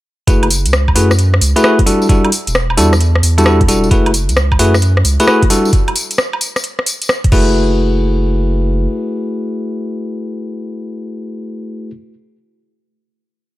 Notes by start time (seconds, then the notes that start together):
0.27 F#1 A3 E4 F#4 G#4 B4, kick, closed hi-hat, tambourine
0.43 closed hi-hat, high woodblock
0.50 open hi-hat, tambourine
0.65 C#2, closed hi-hat, tambourine
0.73 cross-stick, tambourine
0.88 kick, high woodblock
0.96 F#2 A3 E4 F#4 G#4 B4, open hi-hat, tambourine
1.11 cross-stick, tambourine
1.19 closed hi-hat, tambourine
1.34 cross-stick
1.41 C#2, open hi-hat, tambourine
1.56 A3 E4 F#4 G#4 B4, closed hi-hat, tambourine
1.64 A3 E4 F#4 G#4 B4, cross-stick, tambourine
1.79 kick, closed hi-hat
1.86 G3 D4 E4 F#4 A4, open hi-hat, tambourine
2.02 tambourine
2.09 G3 D4 E4 F#4 A4, kick, closed hi-hat, tambourine
2.25 closed hi-hat, high woodblock
2.32 open hi-hat, tambourine
2.47 E1, closed hi-hat, tambourine
2.55 cross-stick, tambourine
2.70 high woodblock
2.77 E2 G3 D4 E4 F#4 A4, open hi-hat, tambourine
2.93 cross-stick, tambourine
3.00 closed hi-hat, tambourine
3.15 cross-stick
3.23 E2, open hi-hat, tambourine
3.38 G3 D4 E4 F#4 A4, closed hi-hat, tambourine
3.46 G3 D4 E4 F#4 A4, cross-stick, tambourine
3.61 kick, closed hi-hat
3.68 E1 G3 D4 E4 F#4 A4, open hi-hat, tambourine
3.84 tambourine
3.91 F#1 A3 E4 F#4 G#4 B4, kick, closed hi-hat, tambourine
4.06 closed hi-hat, high woodblock
4.14 open hi-hat, tambourine
4.29 C#2, closed hi-hat, tambourine
4.37 cross-stick, tambourine
4.52 kick, high woodblock
4.59 F#2 A3 E4 F#4 G#4 B4, open hi-hat, tambourine
4.74 cross-stick, tambourine
4.82 closed hi-hat, tambourine
4.97 cross-stick
5.05 C#2, open hi-hat, tambourine
5.20 A3 E4 F#4 G#4 B4, closed hi-hat, tambourine
5.27 A3 E4 F#4 G#4 B4, cross-stick, tambourine
5.42 kick, closed hi-hat
5.50 G3 D4 E4 F#4 A4, open hi-hat, tambourine
5.65 tambourine
5.73 kick, closed hi-hat, tambourine
5.88 closed hi-hat, high woodblock
5.96 open hi-hat, tambourine
6.11 closed hi-hat, tambourine
6.18 cross-stick, tambourine
6.33 high woodblock
6.41 open hi-hat, tambourine
6.56 cross-stick, tambourine
6.64 closed hi-hat, tambourine
6.79 cross-stick
6.86 open hi-hat, tambourine
7.02 closed hi-hat, tambourine
7.09 cross-stick, tambourine
7.24 kick, closed hi-hat
7.32 F#1 A3 E4 F#4 G#4 B4, kick, crash